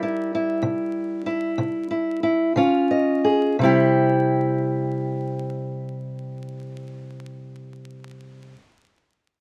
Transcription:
0.00 0.26 C3 medium
0.00 2.56 G3 soft
0.00 0.32 E4 soft
0.00 1.19 A#4 medium
0.35 1.25 E4 medium
0.62 1.18 C3 medium
1.19 3.24 A4 medium
1.26 1.90 E4 soft
1.58 2.16 C3 medium
1.91 2.22 E4 soft
2.23 2.52 E4 soft
2.56 3.17 C#3 medium
2.56 3.56 C#4 soft
2.56 3.56 F4 soft
2.90 3.56 D#5 soft
3.24 3.55 G#4 soft
3.59 8.54 C3 medium
3.59 8.57 G3 medium
3.63 8.59 E4 medium
3.63 8.56 G4 medium

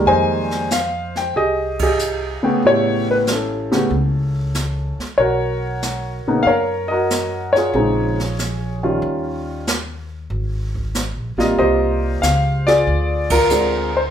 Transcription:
0.00 0.67 D#3 medium
0.00 0.67 G3 medium
0.00 0.67 G#3 medium
0.00 0.67 A#3 medium
0.06 1.30 F2 medium
0.06 1.32 C5 medium
0.06 1.32 D#5 medium
0.06 0.67 G#5 loud
0.06 brush sweep medium
0.51 snare soft
0.71 1.17 F5 medium
0.71 snare soft
0.71 hi-hat pedal soft
1.16 1.35 G5 medium
1.16 snare soft
1.34 2.39 C2 medium
1.34 1.81 G4 medium
1.34 1.81 G#4 medium
1.34 1.77 D#5 medium
1.34 brush sweep soft
1.79 2.61 G4 medium
1.79 2.61 G#4 medium
1.79 2.61 D#5 medium
1.79 kick medium
1.79 ride medium
1.99 hi-hat pedal medium
2.43 3.23 C#3 medium
2.43 3.23 A3 medium
2.43 3.23 B3 medium
2.43 3.23 G5 medium
2.43 muted upright bass stroke soft
2.63 3.87 A1 medium
2.63 3.29 E4 medium
2.63 3.71 G4 medium
2.63 brush sweep soft
2.67 3.06 C#5 loud
3.11 3.16 B4 medium
3.27 4.97 E4 soft
3.27 snare medium
3.27 hi-hat pedal soft
3.31 4.97 C#4 soft
3.31 4.98 A4 medium
3.72 3.89 C#3 medium
3.72 3.89 A3 soft
3.72 3.89 B3 soft
3.72 3.90 G4 medium
3.72 snare soft
3.90 4.95 C#2 medium
3.90 brush sweep soft
4.54 snare medium
4.54 hi-hat pedal medium
4.98 muted upright bass stroke soft
4.98 snare soft
5.18 6.23 B1 medium
5.18 6.43 F#4 medium
5.18 6.43 A#4 medium
5.18 6.42 C#5 medium
5.18 brush sweep soft
5.82 snare medium
5.82 hi-hat pedal medium
6.26 6.45 A#1 medium
6.26 6.45 C#3 soft
6.26 6.45 A#3 soft
6.26 6.45 B3 soft
6.26 6.46 D#4 medium
6.43 7.70 F#2 medium
6.43 6.53 F5 loud
6.43 brush sweep soft
6.47 6.90 A#4 medium
6.47 7.51 C#5 medium
6.88 7.71 F#4 medium
6.88 7.71 A#4 medium
6.88 7.55 D#5 medium
7.10 snare medium
7.10 hi-hat pedal medium
7.53 8.79 F4 medium
7.53 8.78 C#5 medium
7.53 snare soft
7.57 8.80 G#4 medium
7.73 8.98 A#1 medium
7.73 8.14 C#3 soft
7.73 8.15 G#3 soft
7.73 8.15 C4 soft
7.73 8.15 D#4 medium
7.73 brush sweep soft
8.20 snare soft
8.39 snare medium
8.39 hi-hat pedal medium
8.83 9.63 D#3 medium
8.83 9.63 G3 medium
8.83 9.63 C#4 medium
8.83 9.63 F4 medium
9.02 10.26 D#2 medium
9.02 brush sweep soft
9.67 snare medium
9.67 hi-hat pedal medium
10.30 11.11 G#1 medium
10.30 brush sweep medium
10.75 kick soft
10.94 snare medium
10.94 hi-hat pedal medium
11.16 11.36 A#1 medium
11.37 11.57 A1 medium
11.37 12.18 C3 medium
11.37 12.18 G3 medium
11.37 12.18 A#3 medium
11.37 12.18 F4 medium
11.37 11.45 D#5 medium
11.37 snare soft
11.58 12.19 C2 medium
11.58 12.82 G4 medium
11.58 12.82 C5 medium
11.58 12.18 D#5 medium
11.58 brush sweep soft
12.22 12.82 C#2 medium
12.22 12.67 F5 medium
12.22 snare medium
12.22 hi-hat pedal medium
12.67 13.31 F4 medium
12.67 13.91 G#4 medium
12.67 13.32 D5 medium
12.67 snare soft
12.87 14.10 D2 medium
12.87 brush sweep medium
13.30 13.50 F4 medium
13.30 13.96 A#4 medium
13.30 kick medium
13.30 ride medium
13.50 13.90 D3 medium
13.50 13.90 G#3 soft
13.50 13.90 C4 soft
13.50 13.90 F4 medium
13.50 hi-hat pedal medium
13.97 14.02 C5 medium

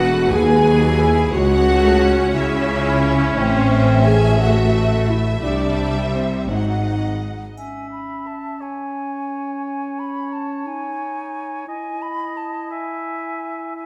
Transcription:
0.00 0.30 E1 loud
0.00 0.28 E2 loud
0.00 0.30 E2 loud
0.00 0.32 A3 loud
0.00 0.30 F#4 loud
0.00 1.31 B4 medium
0.00 0.30 F#5 loud
0.32 1.33 D#2 loud
0.32 1.34 D#2 loud
0.32 0.67 G#3 medium
0.32 1.34 G#4 loud
0.32 1.33 G#5 loud
0.67 1.00 F#3 loud
1.00 1.34 E4 medium
1.33 2.32 C#2 loud
1.33 1.68 G#3 loud
1.33 2.33 F#4 loud
1.33 2.32 C#5 medium
1.33 2.34 F#5 loud
1.68 2.01 A3 loud
2.02 4.40 C#4 loud
2.34 3.35 C#2 loud
2.34 3.35 C#3 loud
2.34 3.35 E4 loud
2.34 3.36 C#5 medium
2.34 3.37 E5 loud
3.37 5.40 A1 loud
3.37 5.40 A2 loud
3.37 4.05 C4 loud
3.37 4.05 C5 loud
3.37 5.40 E5 loud
4.05 4.40 G#4 loud
4.05 4.39 G#5 loud
4.40 5.44 A3 loud
4.40 5.09 F#4 loud
4.40 5.08 F#5 medium
5.08 5.44 E4 medium
5.08 5.44 E5 loud
5.43 6.48 C2 medium
5.43 6.48 C3 medium
5.43 6.51 G3 medium
5.43 5.96 D4 medium
5.43 6.15 D5 loud
5.43 6.48 E5 medium
6.13 6.49 C4 medium
6.13 6.50 C5 medium
6.49 7.37 G#1 medium
6.49 7.37 G#2 medium
6.49 7.04 F#3 medium
6.49 7.57 D#4 medium
6.49 7.55 D#5 medium
6.49 7.38 F#5 medium
7.57 10.67 C#4 soft
7.57 8.62 E5 soft
7.57 7.90 G#5 soft
7.57 triangle soft
7.92 8.29 B5 soft
8.27 8.64 A5 soft
8.60 11.68 C#5 soft
8.60 9.65 G#5 soft
9.66 10.01 G#5 soft
9.99 10.35 B5 soft
10.33 10.69 A5 soft
10.66 11.67 D#4 soft
10.66 11.68 G#5 soft
11.67 13.86 E4 medium
11.67 12.69 D#5 soft
11.67 12.04 G#5 soft
12.02 12.39 B5 medium
12.37 12.73 A5 soft
12.71 13.74 E5 medium
12.71 13.77 G#5 soft
13.76 13.86 E5 soft
13.76 13.86 G#5 soft

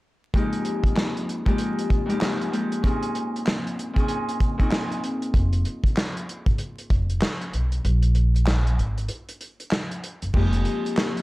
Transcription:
0.34 1.45 F2 medium
0.34 1.46 G#3 medium
0.34 1.48 A#3 medium
0.34 1.47 D#4 medium
0.34 1.47 G4 loud
0.34 kick loud
0.34 closed hi-hat medium
0.53 closed hi-hat medium
0.65 closed hi-hat medium
0.84 kick medium
0.84 closed hi-hat medium
0.97 snare loud
0.97 clap medium
1.17 closed hi-hat soft
1.29 closed hi-hat medium
1.45 2.05 F2 medium
1.45 2.07 G#3 medium
1.45 2.03 A#3 medium
1.45 2.04 D#4 medium
1.45 2.04 G4 loud
1.45 kick loud
1.45 closed hi-hat soft
1.58 closed hi-hat medium
1.79 closed hi-hat medium
1.90 kick medium
1.90 closed hi-hat medium
2.06 2.19 F2 medium
2.06 2.20 G#3 medium
2.06 2.20 D#4 medium
2.06 2.20 G4 loud
2.06 closed hi-hat medium
2.12 2.19 A#3 medium
2.20 2.51 F2 medium
2.20 2.51 G#3 medium
2.20 2.51 A#3 medium
2.20 2.51 D#4 medium
2.20 2.51 G4 medium
2.20 snare loud
2.20 clap medium
2.41 closed hi-hat soft
2.51 2.89 F2 medium
2.51 2.89 G#3 medium
2.51 2.82 A#3 medium
2.51 2.82 D#4 medium
2.51 2.82 G4 medium
2.51 closed hi-hat medium
2.72 closed hi-hat medium
2.83 3.93 A#2 medium
2.83 3.96 C4 medium
2.83 3.99 C#4 medium
2.83 3.96 D#4 medium
2.83 3.97 G#4 loud
2.83 kick loud
2.83 closed hi-hat medium
3.03 closed hi-hat medium
3.15 closed hi-hat medium
3.36 closed hi-hat medium
3.47 snare loud
3.47 clap medium
3.67 closed hi-hat soft
3.79 closed hi-hat medium
3.93 4.57 A#2 medium
3.93 4.53 C4 medium
3.93 4.53 D#4 medium
3.93 4.53 G#4 loud
3.93 kick loud
3.98 4.53 C#4 medium
3.98 closed hi-hat medium
4.08 closed hi-hat medium
4.29 closed hi-hat medium
4.40 kick medium
4.40 closed hi-hat medium
4.58 5.39 A#2 medium
4.58 5.00 C4 medium
4.58 5.00 C#4 medium
4.58 5.00 D#4 medium
4.58 5.00 G#4 loud
4.58 kick medium
4.58 closed hi-hat soft
4.71 snare loud
4.71 clap medium
4.92 closed hi-hat soft
5.04 closed hi-hat medium
5.22 closed hi-hat medium
5.34 5.62 F1 loud
5.34 kick loud
5.34 closed hi-hat medium
5.53 closed hi-hat medium
5.65 closed hi-hat medium
5.84 kick medium
5.84 closed hi-hat medium
5.97 snare loud
5.97 clap medium
6.17 closed hi-hat soft
6.29 closed hi-hat medium
6.46 6.58 G#1 medium
6.46 kick loud
6.46 closed hi-hat soft
6.58 closed hi-hat medium
6.78 closed hi-hat medium
6.90 7.19 F1 medium
6.90 kick medium
6.90 closed hi-hat medium
7.10 closed hi-hat soft
7.21 snare loud
7.21 clap medium
7.41 closed hi-hat soft
7.53 7.81 B1 medium
7.53 closed hi-hat medium
7.72 closed hi-hat medium
7.85 8.74 A#1 loud
7.85 closed hi-hat medium
8.03 closed hi-hat medium
8.15 closed hi-hat medium
8.36 closed hi-hat medium
8.47 snare loud
8.47 clap medium
8.67 closed hi-hat soft
8.78 9.06 G#1 medium
8.78 closed hi-hat medium
8.98 closed hi-hat soft
9.08 closed hi-hat medium
9.29 closed hi-hat medium
9.41 closed hi-hat medium
9.60 closed hi-hat soft
9.71 snare loud
9.71 clap medium
9.91 closed hi-hat soft
10.04 closed hi-hat medium
10.22 10.33 F#1 medium
10.22 closed hi-hat medium
10.33 10.62 F1 loud
10.33 11.22 F2 medium
10.33 11.22 G#3 medium
10.33 11.22 A#3 medium
10.33 11.22 D#4 medium
10.33 11.22 G4 loud
10.33 kick loud
10.33 crash medium
10.53 closed hi-hat medium
10.65 closed hi-hat medium
10.86 closed hi-hat medium
10.97 snare loud
10.97 clap medium
11.17 closed hi-hat soft

